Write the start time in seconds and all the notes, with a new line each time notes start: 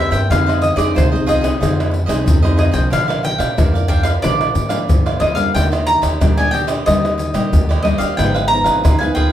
Already playing: E3 A#3 C4 E4 G4 A#4 C5 E5
0.11 G2 A#4 C5 E5 G5, pandeiro, shaker
0.30 F2 F3 C4 D#4 F4 G#4 C5 D#5 F5, pandeiro, tamborim, shaker, surdo
0.46 G#4 C5 D#5, pandeiro, tamborim, shaker
0.61 D#5, muted cavaquinho stroke, pandeiro, shaker
0.76 F2 C4 D#4 G#4 C5 D5 D#5, pandeiro, tamborim, shaker
0.95 C2 C3 F4 G#4 C5 D#5, pandeiro, tamborim, shaker, surdo
1.12 C4 D#4 G#4 C5 D#5, pandeiro, shaker
1.26 F4 G#4 C5 D#5, pandeiro, shaker, surdo
1.41 G#4 C5 D#5, pandeiro, tamborim, shaker
1.60 F2 F3 C4 D#4 F4 G#4 C5 D#5, pandeiro, tamborim, shaker, surdo
1.80 pandeiro, tamborim, shaker
1.91 muted cavaquinho stroke, pandeiro
2.06 C2 C4 D#4 G#4 C5 D#5, pandeiro, tamborim, shaker
2.26 F2 C3, pandeiro, shaker, surdo
2.42 C4 D#4 G#4 C5 D#5, pandeiro, tamborim, shaker
2.56 F4 G#4 C5 D#5, pandeiro, tamborim
2.71 C2 F3 A#3 D4 G#4 C5 D#5 G5, pandeiro, shaker
2.90 A#1 A#2 D4 A#4 D5 F5, pandeiro, tamborim, shaker, surdo
3.08 A#4 D5 F5, pandeiro, tamborim, shaker
3.23 G5, muted cavaquinho stroke, pandeiro, shaker
3.38 A#1 A#4 D5 F5, pandeiro, tamborim, shaker
3.57 F2 F3 A#3 D4 A#4 D5 F5, pandeiro, tamborim, shaker, surdo
3.74 A#4 D5 F5, pandeiro, shaker
3.88 D4 A#4 D5 F5 G5, pandeiro, surdo
4.03 A#4 D5 F5, pandeiro, tamborim, shaker
4.22 A#1 A#2 F3 A#3 D4 A#4 D5 F5, pandeiro, tamborim, shaker, surdo
4.41 pandeiro, tamborim, shaker
4.55 G#2, muted cavaquinho stroke, pandeiro, shaker
4.69 F3 A#3 D4 A#4 D5 F5, pandeiro, tamborim, shaker
4.89 G2 F3, pandeiro, shaker, surdo
5.06 A#4 D5 F5, pandeiro, tamborim, shaker
5.19 F2 F3 A#3 D4 A#4 D5 D#5 F5, pandeiro, tamborim
5.35 G3 A#3 D4 A#4 D5 F5, pandeiro, shaker
5.55 D#2 D#3 D4 G4 D5 D#5 G5, pandeiro, tamborim, shaker, surdo
5.72 G4 D5 D#5, pandeiro, tamborim, shaker
5.87 A#5, muted cavaquinho stroke, pandeiro, shaker
6.02 D#2 G4 D5 D#5, pandeiro, tamborim, shaker
6.21 A#1 A#2 G3 A#3 D4 G4 D5 D#5, pandeiro, tamborim, shaker, surdo
6.37 G3 A#3 D4 G4 D5 D#5 G#5, pandeiro, shaker
6.51 D4 G4 D5 D#5 G5, pandeiro
6.67 G4 D5 D#5, pandeiro, tamborim, shaker
6.86 D#2 D#3 G3 A#3 G4 D#5, pandeiro, tamborim, shaker, surdo
7.05 pandeiro, tamborim, shaker
7.18 muted cavaquinho stroke, pandeiro, shaker
7.34 A#1 G3 A#3 G4 D#5, pandeiro, tamborim, shaker
7.52 D#2 A#2, pandeiro, shaker, surdo
7.69 G4 D5 D#5, pandeiro, tamborim, shaker
7.82 G3 A#3 D4 G4 D5 D#5, pandeiro, tamborim
7.98 D#2 G4 D5 D#5 F5, pandeiro, shaker
8.17 G#1 G#2 F3 B3 D#4 F4 G#4 B4 F5 G5, pandeiro, tamborim, shaker, surdo
8.34 G#4 B4 F5, pandeiro, tamborim, shaker
8.48 F3 B3 D#4 A#5, muted cavaquinho stroke, pandeiro
8.64 G#1 G#4 B4 F5, pandeiro, tamborim, shaker
8.84 D#2 D#3 F4 G#4 B4 F5, pandeiro, tamborim, shaker, surdo
8.99 F3 B3 D#4 G#4 B4 F5 G#5, pandeiro, shaker
9.15 F4 G#4 B4 F5 G5, pandeiro, surdo